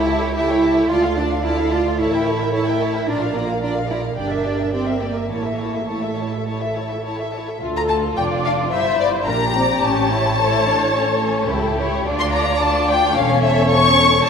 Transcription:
Already playing: double bass section C#2, cello section E4
0.07 viola section G4, violin section E5 A5
0.19 viola section A4, violin section C#5 G5
0.34 cello section E4, viola section G4, violin section E5 A5
0.47 viola section A4, violin section C#5 G5
0.61 viola section G4, violin section E5 A5
0.74 viola section A4, violin section C#5 G5
0.89 double bass section D2, viola section F4, cello section F4, violin section D5 A5
1.03 viola section A4, violin section F5
1.16 cello section D4, viola section F4, violin section D5 A5
1.29 viola section A4, violin section F5
1.43 cello section E4, viola section F4, violin section D5 A5
1.56 viola section A4, violin section F5
1.70 viola section F4, cello section F4, violin section D5 A5
1.84 viola section A4, violin section F5
1.98 double bass section A1, cello section E4, viola section A4, violin section C#5 A5
2.12 viola section A#4, violin section E5 G5
2.26 viola section A4, violin section C#5 A5
2.40 viola section A#4, violin section E5 G5
2.53 cello section E4, viola section A4, violin section C#5 A5
2.67 viola section A#4, violin section E5 G5
2.80 viola section A4, violin section C#5 A5
2.94 viola section A#4, violin section E5 G5
3.07 double bass section A#1, cello section D4, viola section F4, violin section D5 A#5
3.22 viola section A#4, violin section F5
3.35 cello section A#3, viola section F4, violin section D5 A#5
3.48 viola section A#4, violin section F5
3.61 cello section D4, viola section F4, violin section D5 A#5
3.75 viola section A#4, violin section F5
3.88 cello section E4, viola section F4, violin section D5 A#5
4.02 viola section A#4, violin section F5
4.17 double bass section G1, cello section D4, viola section G4, violin section D5 G5
4.30 viola section A#4, violin section E5
4.45 viola section G4, violin section D5 G5
4.58 viola section A#4, violin section E5
4.72 cello section C4, viola section G4, violin section D5 G5
4.87 viola section A#4, violin section E5
5.01 cello section A#3, viola section G4, violin section D5 G5
5.15 viola section A#4, violin section E5
5.30 double bass section A1, cello section A#3, viola section E4, violin section C#5 A5
5.45 viola section A4, violin section E5
5.59 viola section E4, violin section C#5 A5
5.74 viola section A4, violin section E5
5.88 cello section A3, viola section E4, violin section C#5 A5
6.03 viola section A4, violin section E5
6.18 viola section E4, violin section C#5 A5
6.32 viola section A4, violin section E5
6.47 viola section E4, violin section C#5 A5
6.61 viola section A4, violin section E5
6.76 viola section E4, violin section C#5 A5
6.91 viola section A4, violin section E5
7.04 viola section E4, violin section C#5 A5
7.18 viola section A4, violin section E5
7.33 viola section E4, violin section C#5 A5
7.46 viola section A4, violin section E5
7.60 double bass section D2, cello section D2, violin section F4, viola section A4
7.77 violin section A#5
7.90 violin section A5
8.16 double bass section F1, cello section F2, violin section D4 G5, viola section D5
8.44 violin section F5
8.72 double bass section G1, cello section G2, violin section E4 E5, viola section C5
9.00 violin section D5
9.27 double bass section A#1, cello section A#2, violin section D4 G4 A#5, viola section A#4
9.56 violin section C4, viola section D5
9.83 double bass section A1, cello section A2, violin section C#4 A5, viola section C#5
10.12 violin section E4
10.40 violin section E4 A4
10.68 violin section D4
10.95 violin section C#4 A4
11.23 violin section C#4
11.50 double bass section C#2, cello section C#2, violin section E4 G4, viola section A4
11.79 violin section E4, viola section C#5
12.06 double bass section D2, cello section D2, violin section D4 F4, viola section D5
12.20 violin section C6
12.32 violin section A#5
12.61 violin section D4 F4 A5
12.89 violin section G5
13.15 double bass section E1, cello section E2, violin section C#4 A4 F5, viola section C#5
13.43 violin section E5
13.70 violin section C#4 C#6
14.24 double bass section F1, cello section F2, violin section D4 A4 A5, viola section D5

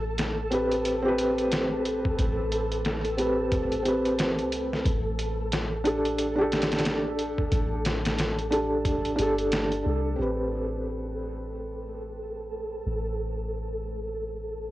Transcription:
Already playing: 808-style bass A1, synth texture A4
0.18 snare, closed hi-hat
0.51 felt piano C4 G4 B4, closed hi-hat
0.71 closed hi-hat
0.85 closed hi-hat
1.02 felt piano C4 G4
1.08 felt piano B4
1.18 closed hi-hat
1.38 closed hi-hat
1.52 snare, closed hi-hat
1.85 closed hi-hat
2.05 kick
2.19 808-style bass A1, kick, closed hi-hat
2.52 closed hi-hat
2.72 closed hi-hat
2.85 snare, closed hi-hat
3.05 closed hi-hat
3.17 felt piano C4 G4 B4, closed hi-hat
3.52 kick, closed hi-hat
3.72 closed hi-hat
3.83 felt piano C4 G4, closed hi-hat
3.88 felt piano B4
4.05 closed hi-hat
4.19 snare, closed hi-hat
4.39 808-style bass C2, closed hi-hat
4.52 closed hi-hat
4.73 snare
4.85 808-style bass A1, kick, closed hi-hat
5.19 closed hi-hat
5.52 snare, closed hi-hat
5.84 felt piano D4 G4 A4, closed hi-hat
6.05 closed hi-hat
6.18 closed hi-hat
6.36 felt piano D4 G4
6.41 felt piano A4
6.52 snare, closed hi-hat
6.62 snare, closed hi-hat
6.72 snare, closed hi-hat
6.78 snare, closed hi-hat
6.85 snare, closed hi-hat
7.19 closed hi-hat
7.38 kick
7.52 808-style bass A1, kick, closed hi-hat
7.85 snare, closed hi-hat
8.05 snare, closed hi-hat
8.18 snare, closed hi-hat
8.39 closed hi-hat
8.51 felt piano D4 G4 A4, closed hi-hat
8.85 kick, closed hi-hat
9.05 closed hi-hat
9.16 808-style bass G1, felt piano D4 G4, closed hi-hat
9.21 felt piano A4
9.38 closed hi-hat
9.52 snare, closed hi-hat
9.72 closed hi-hat
9.86 808-style bass C2
10.16 808-style bass A1, felt piano C4 G4, synth texture A4
10.22 felt piano B4
12.86 808-style bass A1

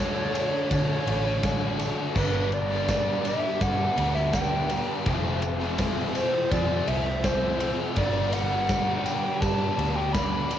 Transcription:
Already playing: fingered electric bass D2, overdriven electric guitar D3, distorted electric guitar D3 A3 D4, ambient pad A4 A5 C#6
0.00 overdriven electric guitar F#3 A3 D4 F#4 A4, soft synth lead C#5
0.16 overdriven electric guitar F#3 A3 D4
0.34 overdriven electric guitar D3 F#3 A3 D4 F#4 A4, ride, tambourine
0.53 overdriven electric guitar F#3 A3 D4, muted overdriven electric guitar stroke
0.71 overdriven electric guitar D3 D4 F#4 A4, fingered electric bass D3, soft synth lead C#5, kick, ride, tambourine
0.88 overdriven electric guitar F#3 A3 D4
1.06 fingered electric bass A1, overdriven electric guitar D3 F#3 A3 D4 F#4 A4, ride
1.24 overdriven electric guitar F#3 A3 D4, muted overdriven electric guitar stroke
1.42 overdriven electric guitar D3 F#3 A3 D4 F#4 A4, kick, snare, ride, tambourine
1.78 overdriven electric guitar D3 F#3 A3 D4 F#4 A4, ride, tambourine
1.97 overdriven electric guitar F#3 A3 D4 F#4 A4
2.15 fingered electric bass G1, overdriven electric guitar G2 D3 G3 B3 D4 B4, ambient pad G4 B5 D6, soft synth lead B4, kick, tambourine, crash
2.52 soft synth lead D5, ride, tambourine
2.70 overdriven electric guitar G3 B3 D4 B4
2.88 overdriven electric guitar G2 D3 G3 B3 D4 B4, kick, snare, ride, tambourine
3.05 overdriven electric guitar B3 D4
3.09 overdriven electric guitar G3
3.25 overdriven electric guitar D3 G3 B3 D4 B4, soft synth lead E5, ride, tambourine
3.43 overdriven electric guitar G3 B3 D4, muted overdriven electric guitar stroke
3.60 fingered electric bass G2, overdriven electric guitar G3 B3 D4 B4, soft synth lead F#5, kick, ride, tambourine
3.80 overdriven electric guitar G3 B3 D4
3.97 fingered electric bass D2, overdriven electric guitar D3 G3 B3 D4 B4, ride
4.01 overdriven electric guitar D4
4.15 overdriven electric guitar B3 D4, soft synth lead E5, muted overdriven electric guitar stroke, snare
4.20 overdriven electric guitar G3
4.32 overdriven electric guitar G2 D3 G3 D4 B4, soft synth lead G5, kick, snare, ride, tambourine
4.36 overdriven electric guitar G3 B3 D4
4.70 overdriven electric guitar D3 G3 B3 D4 B4, ride, tambourine
4.88 overdriven electric guitar B3 D4 B4
4.92 overdriven electric guitar G3
5.06 fingered electric bass F1, overdriven electric guitar F2 C3 F3 A3 C4 F4 A4, ambient pad F4 A4 C6 E6, kick, ride, tambourine
5.42 ride, tambourine
5.60 overdriven electric guitar A3 C4 F4 A4
5.64 overdriven electric guitar F3
5.78 overdriven electric guitar F2 C3 F3 A3 C4 F4 A4, kick, snare, ride, tambourine
5.97 overdriven electric guitar F3 A3 C4
6.15 overdriven electric guitar C3 F3 A3 F4 A4, soft synth lead C5, ride, tambourine
6.19 overdriven electric guitar C4
6.33 overdriven electric guitar F3 A3 C4, muted overdriven electric guitar stroke
6.51 fingered electric bass F2, overdriven electric guitar A3 C4 F4 A4, soft synth lead D5, kick, ride, tambourine
6.71 overdriven electric guitar F3 A3 C4
6.88 fingered electric bass C2, overdriven electric guitar C3 F3 A3 C4 F4 A4, soft synth lead E5, ride
7.06 overdriven electric guitar A3 C4, muted overdriven electric guitar stroke
7.10 overdriven electric guitar F3
7.24 overdriven electric guitar F2 C3 F3 A3 F4 A4, soft synth lead C5, kick, snare, ride, tambourine
7.28 overdriven electric guitar C4
7.60 overdriven electric guitar C3 F3 A3 C4 F4 A4, ride, tambourine
7.79 overdriven electric guitar A3 C4 F4 A4
7.83 overdriven electric guitar F3
7.96 fingered electric bass G1, overdriven electric guitar G2 D3 G3 B3 D4 B4, ambient pad G4 B5 D6, soft synth lead D5, kick, ride, tambourine
8.32 soft synth lead F#5, ride, tambourine
8.51 overdriven electric guitar G3 B3 D4 B4
8.68 overdriven electric guitar G2 D3 G3 B3 D4 B4, kick, snare, ride, tambourine
8.87 overdriven electric guitar G3 B3 D4
9.05 overdriven electric guitar D3 G3 B3 D4 B4, soft synth lead G5, ride, tambourine
9.24 overdriven electric guitar G3 B3 D4, muted overdriven electric guitar stroke
9.41 fingered electric bass G2, overdriven electric guitar G3 B3 D4 B4, soft synth lead A5, kick, ride, tambourine
9.59 overdriven electric guitar G3 B3 D4
9.78 fingered electric bass D2, overdriven electric guitar D3 G3 B3 D4 B4, ride
9.95 overdriven electric guitar B3 D4, soft synth lead G5, muted overdriven electric guitar stroke
10.00 overdriven electric guitar G3
10.12 overdriven electric guitar G2 D3 B4, soft synth lead B5, kick, snare, ride, tambourine
10.17 overdriven electric guitar G3 B3 D4
10.51 overdriven electric guitar D3 G3 B3 D4 B4, ride, tambourine

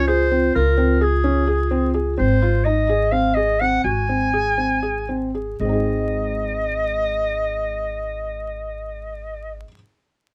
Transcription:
Already playing: upright bass C#2, vibraphone F4
0.07 felt piano G#4, clarinet C5
0.31 felt piano C4
0.55 upright bass C#2, felt piano F4, clarinet A#4
0.77 felt piano C4
1.01 felt piano G#4, clarinet G#4
1.24 felt piano C#4
1.47 felt piano G#4
1.71 felt piano C4
1.94 felt piano G#4
2.17 upright bass G#1, felt piano C4, clarinet C5
2.42 felt piano F4
2.65 felt piano D#4, clarinet D#5
2.89 felt piano G#4
3.12 felt piano C4, clarinet F5
3.35 felt piano G#4, clarinet D#5
3.60 felt piano C4, clarinet F#5
3.84 upright bass G#1, felt piano F#4, clarinet G#5
4.09 felt piano C4
4.34 felt piano G#4
4.58 felt piano C4
4.83 felt piano G#4
5.09 felt piano C4
5.35 felt piano G#4
5.60 upright bass G#1, felt piano G#3, clarinet D#5
5.65 felt piano C4 D#4
5.73 felt piano G#4

